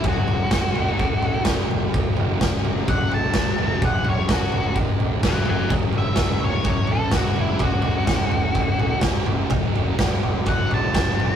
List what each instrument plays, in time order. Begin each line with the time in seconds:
0.03 fingered electric bass F#1, distorted electric guitar F#2 C#3, kick, floor tom
0.07 distorted electric guitar F#3, lead electric guitar F#4
0.27 fingered electric bass F#1, distorted electric guitar C#3 F#3, floor tom
0.50 fingered electric bass F#1, distorted electric guitar F#2 C#3 F#3, kick, snare, floor tom
0.74 fingered electric bass F#1, distorted electric guitar C#3 F#3, floor tom
0.99 fingered electric bass F#1, kick, floor tom
1.22 fingered electric bass A#1, floor tom
1.45 fingered electric bass F#1, distorted electric guitar F#2 C#3, kick, snare, floor tom
1.50 distorted electric guitar F#3
1.68 fingered electric bass F#1, distorted electric guitar F#3, floor tom
1.73 distorted electric guitar C#3
1.92 fingered electric bass F#1, distorted electric guitar F#2 C#3 F#3, kick, floor tom
2.15 fingered electric bass F#1, distorted electric guitar F#3, floor tom
2.20 distorted electric guitar C#3
2.40 fingered electric bass F#1, distorted electric guitar F#2 C#3 F#3, kick, snare, floor tom
2.64 fingered electric bass F#1, distorted electric guitar F#3, floor tom
2.68 distorted electric guitar C#3
2.88 fingered electric bass F#1, lead electric guitar F#5, kick, floor tom
3.11 fingered electric bass A#1, lead electric guitar A5, floor tom
3.34 fingered electric bass F#1, distorted electric guitar F#2 C#3, kick, snare, floor tom
3.38 distorted electric guitar F#3
3.58 fingered electric bass F#1, distorted electric guitar F#3, floor tom
3.62 distorted electric guitar C#3
3.81 fingered electric bass F#1, distorted electric guitar F#2 C#3 F#3, lead electric guitar F#5, kick, floor tom
4.05 fingered electric bass F#1, distorted electric guitar F#3, floor tom
4.09 distorted electric guitar C#3, lead electric guitar C#5
4.28 fingered electric bass F#1, distorted electric guitar F#2 C#3, lead electric guitar F#4, kick, snare, floor tom
4.32 distorted electric guitar F#3
4.52 fingered electric bass F#1, distorted electric guitar C#3 F#3, floor tom
4.76 fingered electric bass F#1, kick, floor tom
5.00 fingered electric bass A#1, floor tom
5.21 fingered electric bass F#1, distorted electric guitar F#2 C#3, kick, snare, floor tom
5.26 distorted electric guitar F#3, lead electric guitar E5 G#5
5.44 fingered electric bass F#1, distorted electric guitar F#3, floor tom
5.48 distorted electric guitar C#3, lead electric guitar E5 G#5
5.68 fingered electric bass F#1, distorted electric guitar F#2 C#3, kick, floor tom
5.72 distorted electric guitar F#3
5.93 fingered electric bass F#1, distorted electric guitar F#3, floor tom
5.97 distorted electric guitar C#3, lead electric guitar E5
6.16 fingered electric bass F#1, distorted electric guitar F#2 C#3, kick, snare, floor tom
6.21 distorted electric guitar F#3
6.40 fingered electric bass F#1, distorted electric guitar F#3, floor tom
6.44 distorted electric guitar C#3, lead electric guitar C#5
6.64 fingered electric bass F#1, kick, floor tom
6.87 fingered electric bass A#1, floor tom
6.92 lead electric guitar A4
7.11 fingered electric bass F#1, distorted electric guitar F#2 C#3, kick, snare, floor tom
7.16 distorted electric guitar F#3, lead electric guitar F#4
7.35 fingered electric bass F#1, distorted electric guitar F#3, floor tom
7.39 distorted electric guitar C#3, lead electric guitar E4
7.59 fingered electric bass F#1, distorted electric guitar F#2 C#3 F#3, kick, floor tom
7.63 lead electric guitar F#4
7.82 fingered electric bass F#1, distorted electric guitar F#3, floor tom
7.87 distorted electric guitar C#3
8.06 fingered electric bass F#1, distorted electric guitar F#2 C#3, kick, snare, floor tom
8.10 distorted electric guitar F#3
8.30 fingered electric bass F#1, distorted electric guitar F#3, floor tom
8.34 distorted electric guitar C#3
8.55 fingered electric bass F#1, kick, floor tom
8.78 fingered electric bass A#1, floor tom
9.01 fingered electric bass F#1, distorted electric guitar F#2 C#3, kick, snare, floor tom
9.06 distorted electric guitar F#3
9.24 fingered electric bass F#1, distorted electric guitar F#3, floor tom
9.29 distorted electric guitar C#3
9.50 fingered electric bass F#1, distorted electric guitar F#2 C#3, kick, floor tom
9.54 distorted electric guitar F#3
9.73 fingered electric bass F#1, distorted electric guitar F#3, floor tom
9.77 distorted electric guitar C#3
9.97 fingered electric bass F#1, distorted electric guitar F#2 C#3, kick, snare, floor tom
10.01 distorted electric guitar F#3
10.21 fingered electric bass F#1, distorted electric guitar F#3, floor tom
10.26 distorted electric guitar C#3
10.46 fingered electric bass F#1, lead electric guitar F#5, kick, floor tom
10.69 fingered electric bass A#1, floor tom
10.74 lead electric guitar A5
10.92 fingered electric bass F#1, distorted electric guitar F#2 C#3 F#3, kick, snare, floor tom
11.17 fingered electric bass F#1, distorted electric guitar C#3 F#3, floor tom